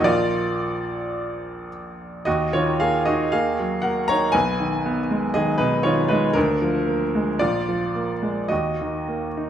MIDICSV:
0, 0, Header, 1, 2, 480
1, 0, Start_track
1, 0, Key_signature, -6, "minor"
1, 0, Tempo, 1086957
1, 28, Time_signature, 2, 2, 24, 8
1, 1468, Tempo, 1016949
1, 3388, Tempo, 1123596
1, 4287, End_track
2, 0, Start_track
2, 0, Title_t, "Grand piano"
2, 0, Program_c, 0, 0
2, 0, Control_c, 0, 64, 127
2, 2, Note_on_c, 0, 75, 69
2, 8, Note_on_c, 0, 34, 59
2, 13, Note_on_c, 0, 53, 49
2, 19, Note_on_c, 0, 74, 90
2, 24, Note_on_c, 0, 65, 70
2, 25, Note_on_c, 0, 58, 45
2, 35, Control_c, 0, 64, 0
2, 40, Note_off_c, 0, 75, 0
2, 119, Control_c, 0, 64, 127
2, 734, Note_off_c, 0, 65, 0
2, 749, Note_off_c, 0, 74, 0
2, 970, Note_off_c, 0, 34, 0
2, 976, Note_off_c, 0, 53, 0
2, 979, Note_off_c, 0, 58, 0
2, 995, Note_on_c, 0, 75, 83
2, 1000, Note_on_c, 0, 66, 69
2, 1003, Note_on_c, 0, 39, 63
2, 1005, Control_c, 0, 64, 0
2, 1082, Control_c, 0, 64, 127
2, 1111, Note_off_c, 0, 66, 0
2, 1117, Note_off_c, 0, 75, 0
2, 1118, Note_on_c, 0, 73, 77
2, 1123, Note_on_c, 0, 65, 54
2, 1126, Note_on_c, 0, 51, 44
2, 1231, Note_off_c, 0, 65, 0
2, 1235, Note_on_c, 0, 77, 87
2, 1237, Note_off_c, 0, 73, 0
2, 1240, Note_on_c, 0, 68, 58
2, 1245, Note_on_c, 0, 58, 46
2, 1311, Note_off_c, 0, 51, 0
2, 1347, Note_off_c, 0, 68, 0
2, 1349, Note_on_c, 0, 75, 82
2, 1353, Note_off_c, 0, 77, 0
2, 1355, Note_on_c, 0, 66, 60
2, 1360, Note_on_c, 0, 63, 56
2, 1427, Note_off_c, 0, 58, 0
2, 1461, Note_off_c, 0, 66, 0
2, 1466, Note_off_c, 0, 75, 0
2, 1466, Note_on_c, 0, 77, 85
2, 1469, Note_on_c, 0, 68, 55
2, 1475, Note_on_c, 0, 58, 49
2, 1477, Control_c, 0, 64, 0
2, 1545, Note_off_c, 0, 63, 0
2, 1571, Control_c, 0, 64, 127
2, 1595, Note_on_c, 0, 54, 43
2, 1665, Note_off_c, 0, 58, 0
2, 1693, Note_off_c, 0, 68, 0
2, 1700, Note_on_c, 0, 78, 73
2, 1707, Note_on_c, 0, 70, 62
2, 1708, Note_off_c, 0, 77, 0
2, 1710, Note_on_c, 0, 58, 47
2, 1784, Note_off_c, 0, 54, 0
2, 1819, Note_off_c, 0, 70, 0
2, 1824, Note_on_c, 0, 82, 93
2, 1825, Note_off_c, 0, 78, 0
2, 1830, Note_on_c, 0, 73, 76
2, 1837, Note_on_c, 0, 63, 47
2, 1901, Note_off_c, 0, 58, 0
2, 1932, Note_off_c, 0, 39, 0
2, 1937, Note_on_c, 0, 80, 97
2, 1940, Note_off_c, 0, 73, 0
2, 1942, Note_on_c, 0, 71, 67
2, 1946, Note_off_c, 0, 82, 0
2, 1951, Note_on_c, 0, 35, 60
2, 1952, Note_off_c, 0, 63, 0
2, 1955, Control_c, 0, 64, 0
2, 2027, Control_c, 0, 64, 127
2, 2070, Note_on_c, 0, 51, 44
2, 2192, Note_on_c, 0, 59, 52
2, 2259, Note_off_c, 0, 51, 0
2, 2310, Note_on_c, 0, 56, 48
2, 2379, Note_off_c, 0, 59, 0
2, 2402, Note_off_c, 0, 71, 0
2, 2418, Note_off_c, 0, 80, 0
2, 2419, Note_on_c, 0, 75, 88
2, 2424, Note_on_c, 0, 68, 64
2, 2431, Note_on_c, 0, 51, 52
2, 2497, Note_off_c, 0, 56, 0
2, 2531, Note_on_c, 0, 71, 80
2, 2533, Note_off_c, 0, 68, 0
2, 2538, Note_on_c, 0, 63, 59
2, 2539, Note_off_c, 0, 75, 0
2, 2543, Note_on_c, 0, 47, 48
2, 2616, Note_off_c, 0, 51, 0
2, 2649, Note_off_c, 0, 63, 0
2, 2652, Note_on_c, 0, 73, 76
2, 2655, Note_off_c, 0, 71, 0
2, 2658, Note_on_c, 0, 65, 59
2, 2664, Note_on_c, 0, 51, 48
2, 2732, Note_off_c, 0, 47, 0
2, 2769, Note_off_c, 0, 65, 0
2, 2771, Note_on_c, 0, 71, 79
2, 2774, Note_off_c, 0, 73, 0
2, 2777, Note_on_c, 0, 63, 62
2, 2781, Note_on_c, 0, 56, 56
2, 2852, Note_off_c, 0, 51, 0
2, 2880, Note_off_c, 0, 35, 0
2, 2889, Note_off_c, 0, 63, 0
2, 2889, Note_on_c, 0, 70, 90
2, 2894, Note_off_c, 0, 71, 0
2, 2897, Note_on_c, 0, 62, 64
2, 2899, Note_off_c, 0, 56, 0
2, 2903, Note_on_c, 0, 38, 62
2, 2906, Control_c, 0, 64, 0
2, 2989, Control_c, 0, 64, 127
2, 3023, Note_on_c, 0, 53, 47
2, 3144, Note_on_c, 0, 58, 55
2, 3216, Note_off_c, 0, 53, 0
2, 3274, Note_on_c, 0, 56, 52
2, 3340, Note_off_c, 0, 58, 0
2, 3369, Note_off_c, 0, 62, 0
2, 3377, Note_off_c, 0, 38, 0
2, 3384, Note_off_c, 0, 70, 0
2, 3389, Note_on_c, 0, 74, 83
2, 3393, Note_off_c, 0, 56, 0
2, 3395, Control_c, 0, 64, 0
2, 3395, Note_on_c, 0, 65, 56
2, 3399, Note_on_c, 0, 34, 59
2, 3461, Control_c, 0, 64, 127
2, 3514, Note_on_c, 0, 53, 38
2, 3628, Note_on_c, 0, 58, 43
2, 3697, Note_off_c, 0, 53, 0
2, 3744, Note_on_c, 0, 56, 45
2, 3816, Note_off_c, 0, 58, 0
2, 3847, Note_off_c, 0, 65, 0
2, 3852, Note_off_c, 0, 34, 0
2, 3855, Note_on_c, 0, 75, 75
2, 3860, Note_on_c, 0, 66, 52
2, 3861, Note_off_c, 0, 74, 0
2, 3863, Note_off_c, 0, 56, 0
2, 3867, Note_on_c, 0, 39, 51
2, 3868, Control_c, 0, 64, 0
2, 3955, Control_c, 0, 64, 127
2, 3995, Note_on_c, 0, 51, 37
2, 4109, Note_on_c, 0, 58, 44
2, 4185, Note_off_c, 0, 51, 0
2, 4234, Note_on_c, 0, 63, 40
2, 4287, Note_off_c, 0, 39, 0
2, 4287, Note_off_c, 0, 58, 0
2, 4287, Note_off_c, 0, 63, 0
2, 4287, Note_off_c, 0, 66, 0
2, 4287, Note_off_c, 0, 75, 0
2, 4287, End_track
0, 0, End_of_file